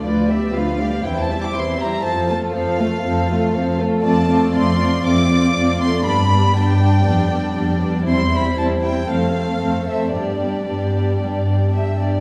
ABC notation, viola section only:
X:1
M:4/4
L:1/8
Q:1/4=119
K:F
V:1 name="Viola section"
[F,D] [G,=B,] [F,D] [G,B,] [E,C] [G,E] [E,C] [G,E] | [F,C] A, [F,C] A, [F,C] A, [F,C] A, | [K:Gmix] [A,C] [A,C] [A,C] [A,C] [A,C] [A,C] [A,C] [A,C] | [G,B,] [G,B,] [G,B,] [G,B,] [G,B,] [G,B,] [G,B,] [G,B,] |
[G,C] [G,C] [G,C] [G,C] [A,C] [A,C] [A,C] [A,C] | [G,B,] [G,B,] [G,B,] [G,B,] [G,B,] [G,B,] [G,B,] [G,B,] |]